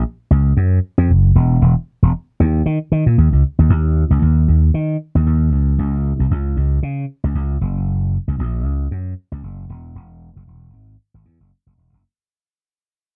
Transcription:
0, 0, Header, 1, 2, 480
1, 0, Start_track
1, 0, Tempo, 521739
1, 1481, Time_signature, 4, 2, 24, 8
1, 12098, End_track
2, 0, Start_track
2, 0, Title_t, "Slap bass"
2, 0, Program_c, 0, 36
2, 281, Note_on_c, 0, 37, 91
2, 480, Note_off_c, 0, 37, 0
2, 522, Note_on_c, 0, 42, 113
2, 720, Note_off_c, 0, 42, 0
2, 899, Note_on_c, 0, 41, 85
2, 1004, Note_on_c, 0, 30, 85
2, 1018, Note_off_c, 0, 41, 0
2, 1202, Note_off_c, 0, 30, 0
2, 1244, Note_on_c, 0, 28, 106
2, 1442, Note_off_c, 0, 28, 0
2, 1486, Note_on_c, 0, 28, 114
2, 1595, Note_off_c, 0, 28, 0
2, 1862, Note_on_c, 0, 28, 91
2, 1947, Note_off_c, 0, 28, 0
2, 2207, Note_on_c, 0, 39, 88
2, 2403, Note_off_c, 0, 39, 0
2, 2445, Note_on_c, 0, 51, 113
2, 2555, Note_off_c, 0, 51, 0
2, 2683, Note_on_c, 0, 51, 88
2, 2794, Note_off_c, 0, 51, 0
2, 2818, Note_on_c, 0, 46, 88
2, 2904, Note_off_c, 0, 46, 0
2, 2925, Note_on_c, 0, 39, 88
2, 3035, Note_off_c, 0, 39, 0
2, 3061, Note_on_c, 0, 37, 76
2, 3146, Note_off_c, 0, 37, 0
2, 3300, Note_on_c, 0, 39, 88
2, 3385, Note_off_c, 0, 39, 0
2, 3402, Note_on_c, 0, 39, 105
2, 3712, Note_off_c, 0, 39, 0
2, 3775, Note_on_c, 0, 37, 87
2, 3863, Note_off_c, 0, 37, 0
2, 3883, Note_on_c, 0, 39, 104
2, 4081, Note_off_c, 0, 39, 0
2, 4123, Note_on_c, 0, 39, 81
2, 4321, Note_off_c, 0, 39, 0
2, 4362, Note_on_c, 0, 51, 96
2, 4560, Note_off_c, 0, 51, 0
2, 4738, Note_on_c, 0, 39, 91
2, 4824, Note_off_c, 0, 39, 0
2, 4844, Note_on_c, 0, 39, 102
2, 5082, Note_off_c, 0, 39, 0
2, 5082, Note_on_c, 0, 37, 112
2, 5280, Note_off_c, 0, 37, 0
2, 5323, Note_on_c, 0, 37, 117
2, 5632, Note_off_c, 0, 37, 0
2, 5699, Note_on_c, 0, 36, 81
2, 5785, Note_off_c, 0, 36, 0
2, 5805, Note_on_c, 0, 37, 85
2, 6002, Note_off_c, 0, 37, 0
2, 6042, Note_on_c, 0, 37, 77
2, 6240, Note_off_c, 0, 37, 0
2, 6281, Note_on_c, 0, 49, 100
2, 6480, Note_off_c, 0, 49, 0
2, 6658, Note_on_c, 0, 37, 85
2, 6745, Note_off_c, 0, 37, 0
2, 6761, Note_on_c, 0, 37, 81
2, 6960, Note_off_c, 0, 37, 0
2, 7003, Note_on_c, 0, 30, 108
2, 7511, Note_off_c, 0, 30, 0
2, 7615, Note_on_c, 0, 37, 82
2, 7703, Note_off_c, 0, 37, 0
2, 7720, Note_on_c, 0, 34, 98
2, 7959, Note_off_c, 0, 34, 0
2, 7959, Note_on_c, 0, 37, 77
2, 8159, Note_off_c, 0, 37, 0
2, 8200, Note_on_c, 0, 42, 97
2, 8399, Note_off_c, 0, 42, 0
2, 8571, Note_on_c, 0, 37, 82
2, 8660, Note_off_c, 0, 37, 0
2, 8679, Note_on_c, 0, 30, 84
2, 8879, Note_off_c, 0, 30, 0
2, 8918, Note_on_c, 0, 28, 103
2, 9118, Note_off_c, 0, 28, 0
2, 9156, Note_on_c, 0, 28, 107
2, 9468, Note_off_c, 0, 28, 0
2, 9532, Note_on_c, 0, 30, 85
2, 9621, Note_off_c, 0, 30, 0
2, 9637, Note_on_c, 0, 28, 100
2, 9837, Note_off_c, 0, 28, 0
2, 9876, Note_on_c, 0, 32, 85
2, 10077, Note_off_c, 0, 32, 0
2, 10250, Note_on_c, 0, 32, 110
2, 10340, Note_off_c, 0, 32, 0
2, 10354, Note_on_c, 0, 40, 86
2, 10468, Note_off_c, 0, 40, 0
2, 10489, Note_on_c, 0, 30, 77
2, 10579, Note_off_c, 0, 30, 0
2, 10731, Note_on_c, 0, 30, 85
2, 10820, Note_off_c, 0, 30, 0
2, 10835, Note_on_c, 0, 28, 93
2, 10949, Note_off_c, 0, 28, 0
2, 10973, Note_on_c, 0, 30, 85
2, 11061, Note_off_c, 0, 30, 0
2, 12098, End_track
0, 0, End_of_file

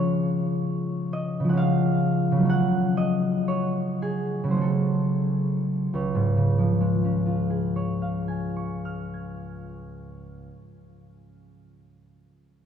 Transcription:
0, 0, Header, 1, 2, 480
1, 0, Start_track
1, 0, Key_signature, -5, "major"
1, 0, Tempo, 891530
1, 1325, Time_signature, 3, 2, 24, 8
1, 1325, Tempo, 1003344
1, 1805, Tempo, 1140684
1, 2285, Tempo, 1336303
1, 2765, Tempo, 1293103
1, 4205, Tempo, 1265823
1, 5281, End_track
2, 0, Start_track
2, 0, Title_t, "Harp"
2, 0, Program_c, 0, 46
2, 0, Note_on_c, 0, 49, 48
2, 0, Note_on_c, 0, 53, 37
2, 0, Note_on_c, 0, 56, 37
2, 0, Note_on_c, 0, 61, 39
2, 0, Note_on_c, 0, 65, 37
2, 0, Note_on_c, 0, 68, 41
2, 0, Note_on_c, 0, 73, 69
2, 608, Note_on_c, 0, 75, 67
2, 747, Note_off_c, 0, 49, 0
2, 753, Note_on_c, 0, 49, 50
2, 770, Note_off_c, 0, 53, 0
2, 777, Note_on_c, 0, 53, 39
2, 793, Note_off_c, 0, 56, 0
2, 799, Note_on_c, 0, 56, 41
2, 803, Note_on_c, 0, 78, 58
2, 818, Note_off_c, 0, 61, 0
2, 824, Note_on_c, 0, 61, 39
2, 847, Note_on_c, 0, 77, 79
2, 867, Note_off_c, 0, 78, 0
2, 938, Note_off_c, 0, 75, 0
2, 1032, Note_off_c, 0, 65, 0
2, 1036, Note_off_c, 0, 68, 0
2, 1242, Note_off_c, 0, 49, 0
2, 1248, Note_on_c, 0, 49, 50
2, 1274, Note_on_c, 0, 54, 37
2, 1295, Note_on_c, 0, 57, 43
2, 1312, Note_off_c, 0, 61, 0
2, 1318, Note_off_c, 0, 53, 0
2, 1319, Note_on_c, 0, 61, 43
2, 1329, Note_off_c, 0, 56, 0
2, 1341, Note_on_c, 0, 78, 80
2, 1350, Note_off_c, 0, 77, 0
2, 1570, Note_on_c, 0, 75, 79
2, 1806, Note_off_c, 0, 73, 0
2, 1811, Note_on_c, 0, 73, 60
2, 1970, Note_off_c, 0, 75, 0
2, 2040, Note_on_c, 0, 68, 69
2, 2209, Note_off_c, 0, 49, 0
2, 2214, Note_on_c, 0, 49, 46
2, 2227, Note_off_c, 0, 54, 0
2, 2232, Note_on_c, 0, 54, 38
2, 2243, Note_on_c, 0, 72, 36
2, 2246, Note_off_c, 0, 57, 0
2, 2251, Note_on_c, 0, 57, 43
2, 2263, Note_off_c, 0, 61, 0
2, 2268, Note_on_c, 0, 61, 44
2, 2288, Note_on_c, 0, 69, 57
2, 2313, Note_off_c, 0, 72, 0
2, 2381, Note_off_c, 0, 68, 0
2, 2753, Note_off_c, 0, 49, 0
2, 2761, Note_off_c, 0, 54, 0
2, 2762, Note_off_c, 0, 73, 0
2, 2763, Note_on_c, 0, 37, 42
2, 2766, Note_on_c, 0, 73, 40
2, 2769, Note_off_c, 0, 57, 0
2, 2785, Note_off_c, 0, 69, 0
2, 2790, Note_off_c, 0, 78, 0
2, 2842, Note_on_c, 0, 44, 46
2, 2925, Note_on_c, 0, 49, 41
2, 3002, Note_on_c, 0, 53, 44
2, 3086, Note_on_c, 0, 56, 42
2, 3169, Note_off_c, 0, 61, 0
2, 3173, Note_on_c, 0, 61, 44
2, 3254, Note_on_c, 0, 65, 38
2, 3344, Note_on_c, 0, 68, 38
2, 3438, Note_off_c, 0, 73, 0
2, 3440, Note_on_c, 0, 73, 35
2, 3536, Note_on_c, 0, 77, 32
2, 3633, Note_on_c, 0, 80, 34
2, 3739, Note_on_c, 0, 85, 34
2, 3845, Note_on_c, 0, 89, 37
2, 3951, Note_on_c, 0, 92, 31
2, 4454, Note_off_c, 0, 37, 0
2, 4534, Note_off_c, 0, 44, 0
2, 4619, Note_off_c, 0, 49, 0
2, 4698, Note_off_c, 0, 53, 0
2, 4762, Note_off_c, 0, 92, 0
2, 4763, Note_off_c, 0, 68, 0
2, 4763, Note_off_c, 0, 80, 0
2, 4764, Note_off_c, 0, 65, 0
2, 4764, Note_off_c, 0, 73, 0
2, 4764, Note_off_c, 0, 77, 0
2, 4764, Note_off_c, 0, 85, 0
2, 4764, Note_off_c, 0, 89, 0
2, 4765, Note_off_c, 0, 56, 0
2, 4767, Note_off_c, 0, 61, 0
2, 5281, End_track
0, 0, End_of_file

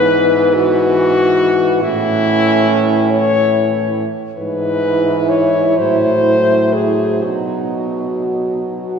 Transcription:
0, 0, Header, 1, 5, 480
1, 0, Start_track
1, 0, Key_signature, 4, "major"
1, 0, Tempo, 906344
1, 526, Tempo, 847458
1, 1002, Time_signature, 6, 3, 24, 8
1, 1966, Tempo, 886263
1, 2926, Tempo, 969305
1, 3886, Tempo, 1027397
1, 4700, End_track
2, 0, Start_track
2, 0, Title_t, "French horn"
2, 0, Program_c, 0, 60
2, 0, Note_on_c, 0, 71, 126
2, 289, Note_on_c, 0, 66, 127
2, 297, Note_off_c, 0, 71, 0
2, 992, Note_on_c, 0, 64, 125
2, 1001, Note_off_c, 0, 66, 0
2, 1718, Note_off_c, 0, 64, 0
2, 1721, Note_on_c, 0, 73, 125
2, 2189, Note_off_c, 0, 73, 0
2, 2425, Note_on_c, 0, 71, 119
2, 2918, Note_on_c, 0, 73, 120
2, 2926, Note_off_c, 0, 71, 0
2, 3160, Note_on_c, 0, 72, 120
2, 3167, Note_off_c, 0, 73, 0
2, 3632, Note_on_c, 0, 68, 110
2, 3640, Note_off_c, 0, 72, 0
2, 3885, Note_on_c, 0, 66, 88
2, 3892, Note_off_c, 0, 68, 0
2, 4610, Note_off_c, 0, 66, 0
2, 4700, End_track
3, 0, Start_track
3, 0, Title_t, "French horn"
3, 0, Program_c, 1, 60
3, 0, Note_on_c, 1, 59, 89
3, 977, Note_off_c, 1, 59, 0
3, 1003, Note_on_c, 1, 61, 108
3, 2259, Note_off_c, 1, 61, 0
3, 2433, Note_on_c, 1, 64, 103
3, 3867, Note_off_c, 1, 64, 0
3, 3882, Note_on_c, 1, 63, 83
3, 4549, Note_off_c, 1, 63, 0
3, 4612, Note_on_c, 1, 66, 82
3, 4700, Note_off_c, 1, 66, 0
3, 4700, End_track
4, 0, Start_track
4, 0, Title_t, "French horn"
4, 0, Program_c, 2, 60
4, 0, Note_on_c, 2, 52, 97
4, 2259, Note_off_c, 2, 52, 0
4, 2436, Note_on_c, 2, 52, 88
4, 3159, Note_on_c, 2, 54, 81
4, 3167, Note_off_c, 2, 52, 0
4, 4700, Note_off_c, 2, 54, 0
4, 4700, End_track
5, 0, Start_track
5, 0, Title_t, "French horn"
5, 0, Program_c, 3, 60
5, 0, Note_on_c, 3, 44, 101
5, 977, Note_off_c, 3, 44, 0
5, 997, Note_on_c, 3, 45, 107
5, 2256, Note_off_c, 3, 45, 0
5, 2430, Note_on_c, 3, 44, 96
5, 3138, Note_off_c, 3, 44, 0
5, 3158, Note_on_c, 3, 45, 90
5, 3872, Note_off_c, 3, 45, 0
5, 3887, Note_on_c, 3, 47, 84
5, 4700, Note_off_c, 3, 47, 0
5, 4700, End_track
0, 0, End_of_file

